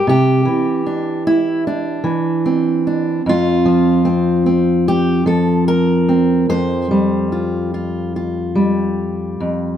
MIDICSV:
0, 0, Header, 1, 2, 480
1, 0, Start_track
1, 0, Tempo, 803213
1, 34, Time_signature, 4, 2, 24, 8
1, 3394, Tempo, 829876
1, 5762, End_track
2, 0, Start_track
2, 0, Title_t, "Steel-string acoustic guitar"
2, 0, Program_c, 0, 25
2, 0, Note_on_c, 0, 55, 50
2, 43, Note_on_c, 0, 48, 64
2, 56, Note_on_c, 0, 67, 77
2, 268, Note_off_c, 0, 55, 0
2, 271, Note_on_c, 0, 52, 52
2, 277, Note_off_c, 0, 48, 0
2, 516, Note_on_c, 0, 62, 41
2, 749, Note_off_c, 0, 62, 0
2, 758, Note_on_c, 0, 64, 72
2, 989, Note_off_c, 0, 64, 0
2, 998, Note_on_c, 0, 62, 60
2, 1210, Note_off_c, 0, 52, 0
2, 1217, Note_on_c, 0, 52, 58
2, 1233, Note_off_c, 0, 67, 0
2, 1468, Note_on_c, 0, 60, 40
2, 1707, Note_off_c, 0, 62, 0
2, 1715, Note_on_c, 0, 62, 40
2, 1912, Note_off_c, 0, 52, 0
2, 1920, Note_off_c, 0, 62, 0
2, 1949, Note_on_c, 0, 41, 66
2, 1968, Note_on_c, 0, 65, 77
2, 2184, Note_on_c, 0, 53, 54
2, 2418, Note_off_c, 0, 60, 0
2, 2421, Note_on_c, 0, 60, 43
2, 2664, Note_off_c, 0, 60, 0
2, 2667, Note_on_c, 0, 60, 39
2, 2914, Note_off_c, 0, 65, 0
2, 2917, Note_on_c, 0, 67, 75
2, 3141, Note_off_c, 0, 53, 0
2, 3143, Note_on_c, 0, 53, 53
2, 3148, Note_off_c, 0, 67, 0
2, 3151, Note_on_c, 0, 69, 72
2, 3391, Note_off_c, 0, 69, 0
2, 3394, Note_on_c, 0, 70, 78
2, 3622, Note_off_c, 0, 60, 0
2, 3629, Note_on_c, 0, 60, 40
2, 3837, Note_off_c, 0, 60, 0
2, 3858, Note_off_c, 0, 41, 0
2, 3865, Note_off_c, 0, 70, 0
2, 3865, Note_on_c, 0, 41, 63
2, 3867, Note_on_c, 0, 72, 84
2, 4103, Note_off_c, 0, 53, 0
2, 4105, Note_on_c, 0, 55, 52
2, 4344, Note_on_c, 0, 65, 37
2, 4584, Note_off_c, 0, 65, 0
2, 4586, Note_on_c, 0, 65, 37
2, 4827, Note_off_c, 0, 65, 0
2, 4829, Note_on_c, 0, 65, 37
2, 5054, Note_off_c, 0, 55, 0
2, 5057, Note_on_c, 0, 55, 55
2, 5067, Note_off_c, 0, 72, 0
2, 5541, Note_off_c, 0, 41, 0
2, 5548, Note_on_c, 0, 41, 47
2, 5762, Note_off_c, 0, 41, 0
2, 5762, Note_off_c, 0, 55, 0
2, 5762, Note_off_c, 0, 65, 0
2, 5762, End_track
0, 0, End_of_file